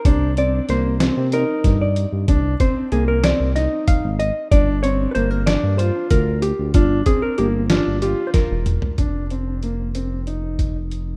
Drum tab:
HH |x-x-x-x-x-x-x-|x-x-x-x-x-x-x-|x-x-x-x-x-x-x-|x-x-x-x-x-x-x-|
SD |----o-o---o---|------o-o-----|------o-------|------o---o---|
T2 |--------------|--------------|--------------|------------o-|
FT |--------------|--------------|--------------|-------------o|
BD |o---------o---|o-o-------o---|o---------o---|o-o-------o---|

HH |x-x-x-x-x-x-x-|
SD |--------------|
T2 |--------------|
FT |--------------|
BD |o---------o---|